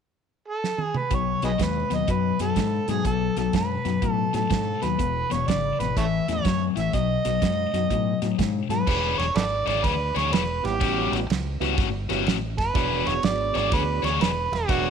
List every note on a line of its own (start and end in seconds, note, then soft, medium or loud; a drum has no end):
0.48 0.81 A4 medium
0.64 snare medium
0.78 0.99 G#4 medium
0.78 high tom medium
0.94 1.16 B4 medium
0.94 mid tom medium
1.11 1.34 B1 medium
1.11 1.39 B2 medium
1.11 1.40 F#3 medium
1.11 1.44 C#5 medium
1.11 kick medium
1.11 closed hi-hat medium
1.42 1.55 B1 medium
1.42 1.57 B2 medium
1.42 1.58 F#3 medium
1.42 1.51 G#4 medium
1.42 1.52 B4 medium
1.42 1.65 D#5 medium
1.42 snare soft
1.42 closed hi-hat soft
1.58 1.83 D#2 medium
1.58 1.87 B2 medium
1.58 1.88 G#3 medium
1.58 kick medium
1.58 snare medium
1.58 closed hi-hat medium
1.64 1.96 B4 medium
1.90 2.03 D#2 medium
1.90 2.06 B2 medium
1.90 2.06 F#3 medium
1.90 snare soft
1.90 closed hi-hat soft
1.94 2.12 D#5 medium
2.08 2.31 F#2 medium
2.08 2.36 B2 medium
2.08 2.37 F#3 medium
2.08 2.41 B4 medium
2.08 kick medium
2.08 closed hi-hat medium
2.39 2.52 F#2 medium
2.39 2.55 B2 medium
2.39 2.55 F#3 medium
2.39 2.91 A4 medium
2.39 snare soft
2.39 closed hi-hat medium
2.56 2.79 G#2 medium
2.56 2.85 B2 medium
2.56 2.85 G#3 medium
2.56 kick medium
2.56 snare medium
2.56 closed hi-hat medium
2.88 3.00 G#2 medium
2.88 3.03 B2 medium
2.88 3.04 F#3 medium
2.88 3.06 G#4 medium
2.88 snare soft
2.88 closed hi-hat medium
3.05 3.28 B1 medium
3.05 3.33 B2 medium
3.05 3.34 F#3 medium
3.05 3.35 A4 medium
3.05 kick medium
3.05 closed hi-hat medium
3.37 3.49 B1 medium
3.37 3.52 B2 medium
3.37 3.52 F#3 medium
3.37 3.53 A4 medium
3.37 snare soft
3.37 closed hi-hat soft
3.53 3.76 F#2 medium
3.53 3.82 B2 medium
3.53 3.82 G#3 medium
3.53 4.11 B4 medium
3.53 kick medium
3.53 snare loud
3.53 closed hi-hat medium
3.85 3.97 F#2 medium
3.85 4.00 B2 medium
3.85 4.01 F#3 medium
3.85 snare soft
3.85 closed hi-hat soft
4.02 4.25 A2 medium
4.02 4.31 B2 medium
4.02 4.31 F#3 medium
4.02 kick medium
4.02 closed hi-hat medium
4.11 4.35 A4 medium
4.33 4.46 A2 medium
4.33 4.49 B2 medium
4.33 4.49 F#3 medium
4.33 4.85 A4 medium
4.33 snare soft
4.33 closed hi-hat medium
4.50 4.73 G#2 medium
4.50 4.79 B2 medium
4.50 4.79 G#3 medium
4.50 kick medium
4.50 snare medium
4.50 closed hi-hat medium
4.82 4.95 D#2 medium
4.82 4.97 B2 medium
4.82 4.98 F#3 medium
4.82 5.34 B4 medium
4.82 snare soft
4.82 closed hi-hat medium
4.99 5.22 E1 medium
4.99 5.27 E2 medium
4.99 5.28 B2 medium
4.99 kick medium
4.99 closed hi-hat medium
5.30 5.44 E1 medium
5.30 5.46 E2 medium
5.30 5.46 B2 medium
5.30 5.50 C#5 medium
5.30 snare soft
5.30 closed hi-hat medium
5.48 5.71 G#1 medium
5.48 5.77 E2 medium
5.48 5.77 C#3 medium
5.48 5.81 D5 medium
5.48 kick medium
5.48 snare loud
5.48 closed hi-hat medium
5.79 5.91 G#1 medium
5.79 5.95 E2 medium
5.79 5.95 B2 medium
5.79 5.96 B4 medium
5.79 snare soft
5.79 closed hi-hat medium
5.96 6.19 A1 medium
5.96 6.25 A2 medium
5.96 6.25 E3 medium
5.96 6.06 A4 medium
5.96 6.04 C#5 medium
5.96 6.31 E5 loud
5.96 kick medium
5.96 closed hi-hat medium
6.28 6.40 E2 medium
6.28 6.43 A2 medium
6.28 6.44 E3 medium
6.28 6.64 C#5 medium
6.28 snare soft
6.28 closed hi-hat medium
6.45 6.68 F#2 medium
6.45 6.73 A2 medium
6.45 6.74 F#3 medium
6.45 kick medium
6.45 snare medium
6.45 closed hi-hat medium
6.76 6.89 A1 medium
6.76 6.91 A2 medium
6.76 6.91 E3 medium
6.76 6.93 E5 medium
6.76 snare soft
6.76 closed hi-hat medium
6.93 7.16 B1 medium
6.93 7.22 B2 medium
6.93 7.22 F#3 medium
6.93 8.35 D#5 loud
6.93 kick medium
6.93 snare soft
6.93 closed hi-hat medium
7.25 7.38 B1 medium
7.25 7.40 B2 medium
7.25 7.40 F#3 medium
7.25 snare soft
7.25 closed hi-hat medium
7.42 7.65 F#2 medium
7.42 7.70 B2 medium
7.42 7.71 G#3 medium
7.42 kick medium
7.42 snare medium
7.42 closed hi-hat medium
7.73 7.86 F#2 medium
7.73 7.89 B2 medium
7.73 7.89 F#3 medium
7.73 snare soft
7.73 closed hi-hat medium
7.90 8.13 A2 medium
7.90 8.19 B2 medium
7.90 8.19 F#3 medium
7.90 kick medium
7.90 closed hi-hat medium
8.22 8.34 A2 medium
8.22 8.37 B2 medium
8.22 8.37 F#3 medium
8.22 snare soft
8.22 closed hi-hat medium
8.38 8.62 G#2 medium
8.38 8.67 B2 medium
8.38 8.67 G#3 medium
8.38 kick medium
8.38 snare medium
8.38 closed hi-hat medium
8.69 8.82 G#2 medium
8.69 8.85 B2 medium
8.69 8.86 F#3 medium
8.69 9.16 B4 medium
8.69 snare soft
8.69 closed hi-hat medium
8.87 9.18 E1 medium
8.87 9.24 E3 medium
8.87 9.24 D4 medium
8.87 9.24 G#4 medium
8.87 9.24 C#5 medium
8.87 kick loud
8.87 snare soft
8.87 crash loud
9.18 9.35 E1 medium
9.18 9.34 C#5 medium
9.18 snare soft
9.18 ride medium
9.35 9.66 G#1 medium
9.35 9.44 A4 medium
9.35 9.44 B4 medium
9.35 9.65 D5 loud
9.35 snare loud
9.35 ride medium
9.66 9.83 G#1 medium
9.66 9.94 E3 medium
9.66 9.93 D4 medium
9.66 9.93 G#4 medium
9.66 9.93 C#5 medium
9.66 9.85 D5 loud
9.66 snare soft
9.66 ride medium
9.84 10.15 D2 medium
9.84 10.16 B4 medium
9.84 kick loud
9.84 snare soft
9.84 ride medium
10.15 10.31 D2 medium
10.15 10.42 E3 medium
10.15 10.42 D4 medium
10.15 10.42 G#4 medium
10.15 10.42 C#5 medium
10.15 10.32 C#5 medium
10.15 snare soft
10.15 ride medium
10.32 10.63 E1 medium
10.32 10.67 B4 medium
10.32 snare loud
10.32 ride medium
10.62 10.80 G#1 medium
10.62 11.26 G3 medium
10.62 11.25 B3 medium
10.62 11.26 E4 medium
10.62 11.13 G4 medium
10.62 11.26 C#5 medium
10.62 11.26 F#5 medium
10.62 snare soft
10.62 ride medium
10.80 11.11 A1 medium
10.80 11.17 A2 medium
10.80 11.17 G3 medium
10.80 11.18 C#4 medium
10.80 11.18 F#4 medium
10.80 kick loud
10.80 snare soft
10.80 ride medium
11.12 11.28 A1 medium
11.12 snare soft
11.12 ride medium
11.30 11.60 C#2 medium
11.30 snare medium
11.30 ride medium
11.60 11.77 C#2 medium
11.60 11.88 A2 medium
11.60 11.88 G3 medium
11.60 11.76 B3 medium
11.60 11.88 C#4 medium
11.60 11.76 E4 medium
11.60 11.76 F#4 medium
11.60 11.88 F#4 medium
11.60 11.76 G4 medium
11.60 11.77 C#5 medium
11.60 snare soft
11.60 ride medium
11.78 12.08 G1 medium
11.78 kick loud
11.78 snare soft
11.78 ride medium
12.09 12.26 G1 medium
12.09 12.36 A2 medium
12.09 12.36 G3 medium
12.09 12.24 B3 medium
12.09 12.36 C#4 medium
12.09 12.25 E4 medium
12.09 12.36 F#4 loud
12.09 12.25 F#4 medium
12.09 12.25 G4 medium
12.09 12.25 C#5 medium
12.09 snare soft
12.09 ride medium
12.26 12.57 A1 medium
12.26 snare medium
12.26 ride medium
12.58 12.74 F#1 medium
12.58 13.08 B4 loud
12.58 kick medium
12.58 snare soft
12.58 ride medium
12.74 13.05 E1 medium
12.74 13.12 E3 medium
12.74 14.10 B3 medium
12.74 14.10 D4 medium
12.74 13.12 D4 medium
12.74 14.10 F#4 medium
12.74 14.10 G#4 medium
12.74 13.12 G#4 medium
12.74 14.10 C#5 medium
12.74 13.12 C#5 medium
12.74 kick loud
12.74 snare soft
12.74 ride medium
13.07 13.23 E1 medium
13.07 13.26 C#5 loud
13.07 snare soft
13.07 ride medium
13.23 13.54 G#1 medium
13.23 13.56 D5 medium
13.23 snare loud
13.23 ride medium
13.54 13.71 G#1 medium
13.54 13.82 E3 medium
13.54 13.81 D4 medium
13.54 13.81 G#4 medium
13.54 13.81 C#5 medium
13.54 13.72 D5 loud
13.54 snare soft
13.54 ride medium
13.72 14.03 D2 medium
13.72 14.02 B4 loud
13.72 kick loud
13.72 snare soft
13.72 ride medium
14.02 14.20 D2 medium
14.02 14.30 E3 medium
14.02 14.30 D4 medium
14.02 14.30 G#4 medium
14.02 14.29 C#5 medium
14.02 14.20 C#5 medium
14.02 snare soft
14.02 ride medium
14.20 14.51 E1 medium
14.20 14.56 B4 medium
14.20 snare loud
14.20 ride medium
14.52 14.68 E1 medium
14.52 14.90 F#4 medium
14.52 snare soft
14.52 ride medium
14.68 14.90 E1 medium
14.68 14.90 E3 medium
14.68 14.90 B3 medium
14.68 14.90 D4 medium
14.68 14.90 F#4 medium
14.68 14.90 G#4 medium
14.68 14.90 C#5 medium
14.68 kick loud
14.68 snare soft
14.68 ride medium